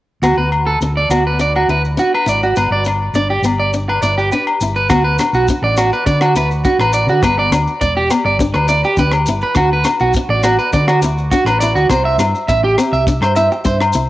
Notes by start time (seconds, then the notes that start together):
0.22 D2 B3 F#4, low agogo, maracas
0.37 D2 B4
0.52 low agogo
0.67 A4
0.81 D2 D4, maracas
0.97 D5
1.09 D2 B3 F#4, low agogo, maracas
1.27 B4
1.39 D4 D5, maracas
1.56 F#4, low agogo
1.68 D2 E4 B4
1.85 maracas
1.97 D4 F#4, maracas
2.14 B4, low agogo
2.26 G#1 E4 D5, maracas
2.43 F#4, maracas
2.56 G1 B3 B4, low agogo, maracas
2.70 G1 D5
2.85 D4, low agogo, maracas
3.13 G1 D4 D5, maracas
3.30 G4
3.42 G1 B3, low agogo, maracas
3.60 D5
3.73 D4, maracas
3.89 B4, low agogo
4.02 G1 E4 D5, maracas
4.18 G4, maracas
4.32 D4 B4, maracas
4.47 low agogo
4.61 G1 E4, maracas
4.75 B4, maracas
4.89 D2 B3 F#4, kick, cross-stick, low agogo, maracas
5.04 B4
5.18 D4, cross-stick, closed hi-hat, low agogo, maracas
5.33 B1 F#4, maracas
5.48 D4, kick, maracas
5.62 A1 D5
5.77 B3 F#4, cross-stick, closed hi-hat, low agogo, maracas
5.93 B4, maracas
6.06 D3 D4 D5, kick, maracas
6.21 F#4, cross-stick, low agogo
6.35 D2 E4 B4, closed hi-hat, maracas
6.51 maracas
6.64 D4 F#4, kick, maracas
6.79 A1 B4, cross-stick, low agogo
6.93 D5, closed hi-hat, maracas
7.07 D3 F#4, maracas
7.22 G1 B3 B4, kick, cross-stick, low agogo, maracas
7.39 D5
7.51 D2 D4, cross-stick, closed hi-hat, low agogo, maracas
7.67 maracas
7.81 E1 D4 D5, kick, maracas
7.97 G4
8.10 B3, cross-stick, closed hi-hat, low agogo, maracas
8.25 G1 D5
8.39 D4, kick, maracas
8.54 D2 B4, cross-stick, low agogo
8.68 E4 D5, closed hi-hat, maracas
8.84 G4, maracas
8.97 D2 D4 B4, kick, maracas
9.12 cross-stick, low agogo
9.26 G1 E4, closed hi-hat, maracas
9.41 B4, maracas
9.55 D2 D4 F#4, kick, cross-stick, low agogo, maracas
9.73 B4
9.84 D4, cross-stick, closed hi-hat, low agogo, maracas
9.99 B1 F#4, maracas
10.13 D4, kick, maracas
10.29 A1 D5
10.43 B3 F#4, cross-stick, closed hi-hat, low agogo, maracas
10.59 B4, maracas
10.73 D3 D4 D5, kick, maracas
10.88 F#4, cross-stick, low agogo
11.01 D2 E4, muted clean electric guitar stroke, closed hi-hat, maracas
11.18 maracas
11.31 D4 F#4, kick, maracas
11.45 A1 B4, cross-stick, low agogo
11.60 E4 D5, closed hi-hat, maracas
11.75 D2 F#4, maracas
11.89 C2 C4 C5, kick, cross-stick, low agogo, maracas
12.05 E5
12.18 G2 E4, cross-stick, closed hi-hat, low agogo, maracas
12.35 maracas
12.48 A1 E4 E5, kick, maracas
12.64 G4
12.78 C4, cross-stick, closed hi-hat, low agogo, maracas
12.92 C2 E5, maracas
13.07 D4, kick, maracas
13.21 G2 C5, cross-stick, low agogo
13.36 E4 E5, closed hi-hat, maracas
13.52 muted clean electric guitar stroke, maracas
13.65 G2 D4 C5, kick, maracas
13.81 cross-stick, low agogo
13.93 C2 E4, closed hi-hat, maracas